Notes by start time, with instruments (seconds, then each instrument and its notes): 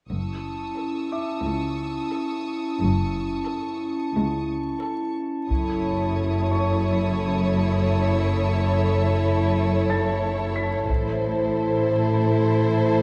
0.10 double bass section F#1, cello section F#2, glass harmonica C#4 E4 A5, violin section C#6 D#6 E6
0.77 violin section A4
1.12 grand piano E5 D6
1.46 cello section C#2
2.13 violin section A4
2.80 double bass section F#1, cello section F#2
3.46 violin section A4
4.15 cello section C#2
4.82 violin section A4
5.48 double bass section F#1, cello section F#2, glass harmonica E4 C#5 A5, violin section E4 A4 C#5 C#6 D#6, taiko
6.51 grand piano C#5 C#6
6.84 violin section E6
9.90 grand piano A5 A6
10.56 grand piano B6
10.89 double bass section A1, cello section A2, violin section E4 A4 C5, glass harmonica E4 C5 A5, taiko